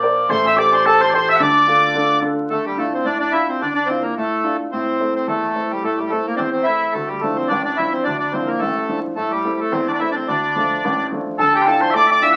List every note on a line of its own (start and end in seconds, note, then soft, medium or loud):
0.00 0.27 A#1 medium
0.00 0.26 A#3 medium
0.00 0.29 A#4 medium
0.00 0.29 C5 soft
0.00 0.30 D5 medium
0.00 0.92 A#5 medium
0.00 0.27 C6 medium
0.00 0.56 D6 medium
0.29 1.37 A1 medium
0.29 1.37 A3 medium
0.29 0.58 C5 medium
0.29 0.46 C5 loud
0.29 0.72 C6 medium
0.45 0.58 E5 loud
0.45 1.97 E6 medium
0.56 0.84 G4 medium
0.56 0.84 A4 medium
0.56 0.84 C5 medium
0.56 0.86 D5 medium
0.56 0.74 D5 loud
0.56 1.41 D6 medium
0.72 0.86 C5 medium
0.72 1.01 C6 medium
0.86 1.11 G4 medium
0.86 1.01 A4 medium
0.86 1.12 A4 medium
0.86 1.01 A4 loud
0.86 1.12 C5 medium
0.86 2.79 A5 medium
1.01 1.13 C5 loud
1.01 1.10 C5 medium
1.01 1.13 C6 medium
1.10 1.39 G4 soft
1.10 1.39 A4 soft
1.10 1.39 C5 medium
1.10 1.14 D5 medium
1.10 2.88 C6 medium
1.14 1.29 C5 medium
1.14 1.29 C5 loud
1.29 1.36 E5 loud
1.29 1.41 E5 loud
1.36 2.48 D2 medium
1.36 2.22 D5 medium
1.36 1.40 F#5 medium
1.41 2.47 D3 medium
1.41 2.19 D5 loud
1.41 3.04 D6 medium
1.67 1.93 D4 medium
1.67 1.94 F4 medium
1.67 1.94 A4 medium
1.95 2.20 D4 medium
1.95 2.21 F4 soft
1.95 2.22 A4 medium
2.22 2.49 D4 soft
2.22 2.49 F4 soft
2.22 2.49 A4 medium
2.50 2.77 D3 medium
2.50 2.65 A3 medium
2.65 2.78 G3 medium
2.77 2.93 A3 medium
2.77 2.99 D4 soft
2.77 3.00 E4 soft
2.77 3.00 F4 soft
2.94 3.06 C4 medium
3.04 3.32 A2 medium
3.04 3.18 D4 medium
3.19 3.33 D4 medium
3.32 3.55 D4 soft
3.32 3.48 E4 medium
3.32 3.55 E4 soft
3.32 3.56 F4 soft
3.49 3.61 C4 medium
3.61 3.88 D3 medium
3.61 3.73 D4 medium
3.75 3.88 D4 medium
3.86 4.03 C4 medium
3.86 4.11 D4 soft
3.86 4.11 E4 soft
3.90 4.12 F4 soft
4.02 4.15 A#3 medium
4.17 4.44 A2 medium
4.17 4.57 A3 medium
4.44 4.66 D4 soft
4.44 4.66 E4 soft
4.44 4.67 F4 soft
4.72 5.00 A2 medium
4.72 5.14 C4 medium
5.00 5.22 A3 soft
5.00 5.22 C4 soft
5.00 5.23 E4 soft
5.15 5.27 C4 medium
5.27 5.55 E2 medium
5.27 5.72 A3 medium
5.55 5.78 A3 soft
5.55 5.78 C4 soft
5.55 5.78 E4 soft
5.70 5.84 G3 medium
5.84 6.10 A2 medium
5.84 5.99 A3 medium
5.98 6.11 G3 medium
6.10 6.26 A3 medium
6.10 6.33 A3 soft
6.10 6.34 C4 soft
6.10 6.34 E4 soft
6.26 6.35 A#3 medium
6.36 6.66 E2 medium
6.36 6.50 C4 medium
6.36 6.39 D4 medium
6.51 6.66 C4 medium
6.63 6.89 A3 soft
6.63 6.94 E4 medium
6.68 6.90 C4 soft
6.68 6.90 E4 soft
6.92 7.22 D2 medium
6.92 7.09 A3 medium
7.07 7.21 G3 medium
7.21 7.45 F3 soft
7.21 7.37 A3 medium
7.21 7.45 D4 soft
7.21 7.46 E4 soft
7.36 7.48 C4 medium
7.48 7.78 A1 medium
7.48 7.62 D4 medium
7.64 7.78 D4 medium
7.76 8.01 F3 soft
7.76 8.01 D4 soft
7.76 7.93 E4 medium
7.76 8.01 E4 soft
7.92 8.04 C4 medium
8.04 8.33 D2 medium
8.04 8.17 D4 medium
8.19 8.33 D4 medium
8.33 8.56 F3 soft
8.33 8.49 C4 medium
8.33 8.56 D4 soft
8.33 8.56 E4 soft
8.46 8.61 A#3 medium
8.58 8.89 A1 medium
8.58 9.00 A3 medium
8.89 9.11 F3 soft
8.89 9.11 D4 soft
8.89 9.12 E4 soft
9.16 9.44 A2 medium
9.16 9.32 A3 medium
9.31 9.60 G3 medium
9.45 9.67 A3 soft
9.45 9.67 C4 soft
9.45 9.67 E4 medium
9.60 9.73 A3 medium
9.71 9.99 E2 medium
9.71 9.88 C4 medium
9.87 9.92 D4 medium
9.93 10.00 D4 medium
9.99 10.22 A3 soft
9.99 10.22 C4 soft
9.99 10.10 E4 medium
9.99 10.23 E4 soft
10.11 10.28 C4 medium
10.11 10.15 D4 medium
10.28 10.55 D2 medium
10.28 11.07 D4 medium
10.56 10.78 F3 soft
10.56 10.78 A3 soft
10.56 10.78 D4 medium
10.85 11.11 A1 medium
11.12 11.34 F3 soft
11.12 11.34 A3 soft
11.12 11.34 D4 soft
11.38 12.36 D2 medium
11.38 11.66 D3 medium
11.38 11.62 A4 medium
11.38 11.53 A4 medium
11.38 11.65 A5 medium
11.53 11.67 G4 medium
11.53 12.36 G5 medium
11.62 11.66 C5 medium
11.62 12.36 A5 medium
11.66 11.89 D4 medium
11.66 11.89 E4 soft
11.66 11.89 F4 medium
11.66 11.81 A4 medium
11.81 11.90 C5 medium
11.81 11.94 C5 medium
11.81 12.36 C6 medium
11.90 11.94 E5 medium
11.90 12.09 D6 medium
11.94 12.21 A3 medium
11.94 12.07 D5 medium
11.94 12.10 D5 loud
12.07 12.22 D5 medium
12.07 12.11 E5 medium
12.07 12.36 D6 medium
12.11 12.23 D5 loud
12.22 12.36 D4 soft
12.22 12.36 E4 soft
12.22 12.36 F4 soft
12.22 12.36 E5 loud
12.22 12.33 E5 medium
12.22 12.36 E6 medium
12.33 12.36 F#5 medium